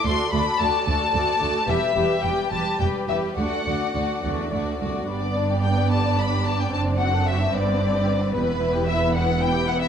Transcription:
<<
  \new Staff \with { instrumentName = "Violin section" } { \time 6/8 \key g \major \tempo 4. = 74 c'''8 b''8 a''8 a''4. | e''4 g''8 a''8 g''8 e''8 | fis''4. r4. | d''4 g''8 a''8 b''8 a''16 g''16 |
a''8 fis''8 e''8 d''4. | b'4 e''8 fis''8 g''8 fis''16 e''16 | }
  \new Staff \with { instrumentName = "Violin section" } { \time 6/8 \key g \major << { d''8 d''8 d''8 d''8 d''8 d''8 | b'8 b'8 b'8 b'8 b'8 b'8 | d''8 d''8 d''8 d''8 d''8 d''8 | d''2.~ |
d''4. b'4.~ | b'2. | } \\ { a'8 a'8 a'8 a'8 a'8 a'8 | g'8 g'8 g'8 g'8 g'8 g'8 | fis'8 fis'8 fis'8 fis'8 fis'8 fis'8 | g16 b16 d'16 g'16 d'16 b16 g16 b16 d'16 g'16 d'16 b16 |
c'16 d'16 fis'16 a'16 fis'16 d'16 g16 b16 d'16 g'16 d'16 b16 | g16 b16 e'16 g'16 e'16 b16 g16 b16 e'16 g'16 e'16 b16 | } >> }
  \new Staff \with { instrumentName = "Viola section" } { \time 6/8 \key g \major << { fis'8 fis'8 fis'8 fis'8 fis'8 fis'8 | g'8 g'8 g'8 g'8 g'8 g'8 | d'8 d'8 d'8 d'8 d'8 d'8 | d'2.~ |
d'2. | e'2. | } \\ { a8 a8 a8 a8 a8 a8 | g8 g8 g8 g8 g8 g8 | a8 a8 a8 a8 a8 a8 | b2. |
c'2. | b2. | } >> }
  \new Staff \with { instrumentName = "Cello section" } { \clef bass \time 6/8 \key g \major d,8 d,8 d,8 d,8 d,8 d,8 | e,8 e,8 e,8 e,8 e,8 e,8 | d,8 d,8 d,8 e,8 d,8 c,8 | g,2. |
fis,4. g,4. | e,2. | }
  \new Staff \with { instrumentName = "Double bass section" } { \clef bass \time 6/8 \key g \major d,8 d,8 d,8 d,8 d,8 d,8 | e,,8 e,,8 e,,8 e,,8 e,,8 e,,8 | d,8 d,8 d,8 d,8 d,8 d,8 | g,,2. |
fis,,4. g,,4. | e,,2. | }
>>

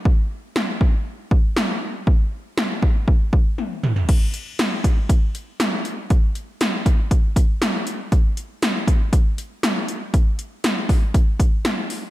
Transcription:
\new DrumStaff \with { instrumentName = "Drums" } \drummode { \time 4/4 \tempo 4 = 119 bd4 sn8 bd8 r8 bd8 sn4 | bd4 sn8 bd8 bd8 bd8 tommh8 toml16 tomfh16 | <cymc hh bd>8 hh8 <hh sn>8 <hh bd>8 <hh bd>8 hh8 <hh sn>8 hh8 | <hh bd>8 hh8 <hh sn>8 <hh bd>8 <hh bd>8 <hh bd>8 <hh sn>8 hh8 |
<hh bd>8 hh8 <hh sn>8 <hh bd>8 <hh bd>8 hh8 <hh sn>8 hh8 | <hh bd>8 hh8 <hh sn>8 <hho bd>8 <hh bd>8 <hh bd>8 <hh sn>8 hho8 | }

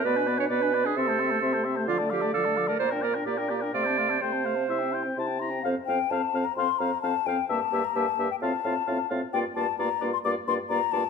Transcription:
<<
  \new Staff \with { instrumentName = "Flute" } { \time 4/4 \key f \major \tempo 4 = 130 b''16 gis''16 b''16 gis''16 b''16 gis''16 b''16 gis''16 c'''16 a''16 c'''16 a''16 c'''16 a''16 c'''16 a''16 | d'''16 a''16 d'''16 a''16 d'''16 a''16 d'''16 a''16 bes''16 g''16 bes''16 g''16 bes''16 g''16 bes''16 g''16 | c'''16 a''16 c'''16 a''16 c'''16 a''16 c'''16 a''16 c'''16 g''16 c'''16 g''16 c'''16 g''16 c'''16 g''16 | f''8 g''8 a''8. bes''16 c'''8 bes''8 a''8 g''8 |
a''8. bes''16 a''8. g''16 a''4. r8 | g''8 a''8 bes''8. c'''16 d'''8 c'''8 bes''8 a''8 | }
  \new Staff \with { instrumentName = "Oboe" } { \time 4/4 \key f \major d''16 b'16 d''16 b'16 d''16 b'16 d''16 b'16 e''16 c''16 e''16 c''16 e''16 c''16 e''16 c''16 | f''16 d''16 f''16 d''16 f''16 d''16 f''16 d''16 d''16 bes'16 d''16 bes'16 d''16 bes'16 d''16 bes'16 | f''16 c''16 f''16 c''16 g''8 f''8 e''8 g''8 a''8 bes''8 | f''8 f''8 f''8 f''8 f''8 f''8 f''8 f''8 |
e''8 e''8 e''8 e''8 f''8 f''8 f''8 f''8 | d''8 d''8 d''8 d''8 d''8 d''8 d''8 d''8 | }
  \new Staff \with { instrumentName = "Clarinet" } { \time 4/4 \key f \major b'8. des''16 b'8. gis'16 a'4. r8 | f'8 g'8 a'8. bes'16 c''8 bes'8 g'8 g'8 | d''4 c''2 r4 | c''8 c''8 c''8 c''8 c''8 c''8 c''8 c''8 |
g'8 g'8 g'8 g'8 f'8 f'8 f'8 f'8 | f'8 f'8 f'8 f'8 f'8 f'8 f'8 f'8 | }
  \new Staff \with { instrumentName = "French horn" } { \time 4/4 \key f \major b16 d'16 b16 d'16 b16 d'16 b16 d'16 c'16 a16 c'16 a16 c'16 a16 c'16 a16 | f16 a16 f16 a16 f16 a16 f16 a16 bes16 d'16 bes16 d'16 bes16 d'16 bes16 d'16 | a16 c'16 a16 c'16 a16 c'16 a16 c'16 e'16 c'16 e'16 c'16 e'16 c'16 e'16 c'16 | c'8 c'8 c'8 c'8 c'8 c'8 c'8 c'8 |
bes8 bes8 bes8 bes8 c'8 c'8 c'8 c'8 | bes8 bes8 bes8 bes8 bes8 bes8 bes8 bes8 | }
  \new Staff \with { instrumentName = "Bassoon" } { \clef bass \time 4/4 \key f \major b,4 b,4 c4 c4 | d4 d4 bes,4 bes,4 | c4 c4 c4 c4 | f,8 f,8 f,8 f,8 f,8 f,8 f,8 f,8 |
g,8 g,8 g,8 g,8 a,8 a,8 a,8 a,8 | g,8 g,8 g,8 g,8 g,8 g,8 g,8 g,8 | }
>>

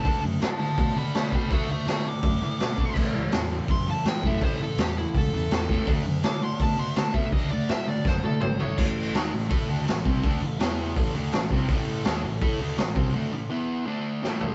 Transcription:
<<
  \new Staff \with { instrumentName = "Lead electric guitar" } { \time 4/4 \key d \lydian \tempo 4 = 165 a''8 r8 <c'' a''>8 <c'' a''>8 <c'' a''>8 <d'' b''>8 <d'' b''>8 <d'' b''>8 | <e'' cis'''>8 <e'' cis'''>8 <e'' cis'''>8 d'''2~ d'''8 | r2 c'''8 a''8 g''8 e''8 | c''8 a'8 g'8 e'8 a'2 |
r4 d'''8 c'''8 a''8 c'''8 a''8 e''8 | dis''8 d''8 e''8 d''8 c''8 a'8 c''8 cis''8 | r1 | r1 |
r1 | r1 | }
  \new Staff \with { instrumentName = "Distorted electric guitar" } { \clef bass \time 4/4 \key d \lydian <d a d'>8 <d a>8 <d a>8 <d a>8 <d a>8 <d a>8 <d a>8 <d a d'>8 | <d a d'>8 <d a>8 <d a>8 <d a>8 <d a>8 <d a>8 <d a>8 <d a d'>8 | <a, e a>8 <a, e>8 <a, e>8 <a, e>8 <a, e>8 <a, e>8 <a, e>8 <a, e a>8 | <a, e a>8 <a, e>8 <a, e>8 <a, e>8 <a, e>8 <a, e>8 <a, e>8 <a, e a>8 |
<d a d'>8 <d a>8 <d a>8 <d a>8 <d a>8 <d a>8 <d a>8 <d a d'>8 | <d a d'>8 <d a>8 <d a>8 <d a>8 <d a>8 <d a>8 <d a>8 <d a d'>8 | <a, e a>4 <dis bes dis'>8 <a, e>8 <a e' a'>8 <d a d'>8 <a, e>8 <c g c'>8 | <d a d'>8 <a, e>8 <e b e'>4 <a, e a>8 <d a d'>8 <a, e>8 <c g c'>8 |
<a, e a>4 <dis bes dis'>8 <a, e>8 <a e' a'>8 <d a d'>8 <a, e>8 <c g c'>8 | <d a d'>8 <a, e>8 <e b e'>4 <d a d'>4 <a, e a>4 | }
  \new Staff \with { instrumentName = "Picked electric bass" } { \clef bass \time 4/4 \key d \lydian d,8 fis,8 a,4 b,4 d8 b,8 | d,4 a,4 fis,8 a,8 b,4 | a,,8 cis,8 e,4 fis,4 a,8 fis,8 | a,,4 e,4 cis,8 e,8 e,4 |
d,8 fis,8 a,4 b,4 d8 b,8 | d,4 a,4 fis,8 a,8 gis,,4 | a,,4 dis,8 a,,8 a,8 d,8 a,,8 c,8 | d,8 a,,8 e,4 a,,8 d,8 a,,8 c,8 |
a,,4 dis,8 a,,8 a,8 d,8 a,,8 c,8 | r1 | }
  \new DrumStaff \with { instrumentName = "Drums" } \drummode { \time 4/4 <hho bd>4 <hho sn>4 <hho bd>4 <hho sn>8 bd8 | <hho bd>4 <hho sn>4 <hho bd>4 <hho sn>8 bd8 | <cymc bd>4 <hho sn>4 <hho bd>4 <hho sn>8 bd8 | <hho bd>4 <hho sn>4 <hho bd>4 <hho sn>8 bd8 |
<hho bd>4 <hho sn>4 <hho bd>4 <hho sn>8 bd8 | <hho bd>4 <hho sn>4 <bd sn>8 tommh8 toml8 tomfh8 | <cymc bd>4 <hho sn>4 <hho bd>4 <hho sn>8 bd8 | <hho bd>4 <hho sn>4 <hho bd>4 <hho sn>8 bd8 |
<hho bd>4 <hho sn>4 <hho bd>4 <hho sn>8 bd8 | r4 r4 r4 sn8 tomfh8 | }
>>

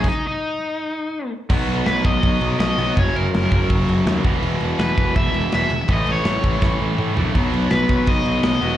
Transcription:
<<
  \new Staff \with { instrumentName = "Overdriven electric guitar" } { \time 4/4 \key b \major \tempo 4 = 164 dis'8 dis'2. r8 | r4 b'8 dis''4. dis''4 | cis''8 ais'2 r4. | r4 b'4 e''4 e''4 |
dis''8 cis''2 r4. | r4 b'4 dis''4 dis''4 | }
  \new Staff \with { instrumentName = "Distorted electric guitar" } { \clef bass \time 4/4 \key b \major r1 | <b, fis b>2.~ <b, fis b>8 <b, fis b>8 | <fis, cis fis>2.~ <fis, cis fis>8 <e, b, e>8~ | <e, b, e>2. <e, b, e>8 r8 |
<a, e a>2.~ <a, e a>8 <a, e a>8 | <b, fis b>2.~ <b, fis b>8 <b, fis b>8 | }
  \new Staff \with { instrumentName = "Picked electric bass" } { \clef bass \time 4/4 \key b \major r1 | b,,8 b,,8 b,,8 b,,8 b,,8 b,,8 b,,8 b,,8 | fis,,8 fis,,8 fis,,8 fis,,8 fis,,8 fis,,8 dis,8 e,,8 | e,,8 e,,8 e,,8 e,,8 e,,8 e,,8 e,,8 e,,8 |
a,,8 a,,8 a,,8 a,,8 a,,8 a,,8 a,8 ais,,8 | b,,8 b,,8 b,,8 b,,8 b,,8 b,,8 b,,8 e,,8 | }
  \new DrumStaff \with { instrumentName = "Drums" } \drummode { \time 4/4 <cymc bd>4 r4 r4 r4 | <cymc bd>8 cymc8 <cymc sn>8 <cymc bd>8 <cymc bd>8 cymc8 <cymc sn>8 cymc8 | <cymc bd>8 cymc8 <cymc sn>8 <cymc bd>8 <cymc bd>8 cymc8 <cymc sn>8 <cymc bd>8 | cymc8 cymc8 <cymc sn>8 <cymc bd>8 <cymc bd>8 cymc8 <cymc sn>8 cymc8 |
<cymc bd>8 cymc8 <cymc sn>8 <cymc bd>8 <bd sn>4 toml8 tomfh8 | <cymc bd>8 cymc8 <cymc sn>8 <cymc bd>8 <cymc bd>8 cymc8 <cymc sn>8 cymc8 | }
>>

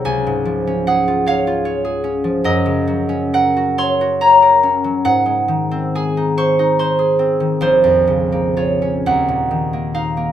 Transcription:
\new Staff \with { instrumentName = "Harp" } { \time 6/8 \key des \major \tempo 4. = 47 << { <aes'' bes''>4 ges''8 f''4. | ees''4 ges''8 c'''8 bes''4 | ges''4 aes''8 des'''8 c'''4 | c''4 des''8 ges''4 f''8 | } \\ { <des, aes'>16 aes,16 f16 des'16 aes'16 f'16 des''16 f'16 des''16 aes'16 des'16 f16 | ges,16 des16 ges16 des'16 bes'16 ges'16 des''16 ges'16 des''16 bes'16 des'16 ges16 | aes,16 aes16 ees16 c'16 aes'16 ees'16 c''16 ees'16 c''16 aes'16 c'16 ees16 | bes,,16 f,16 des16 bes16 f'16 des'16 ees,16 bes,16 ees16 bes16 ees'16 bes16 | } >> }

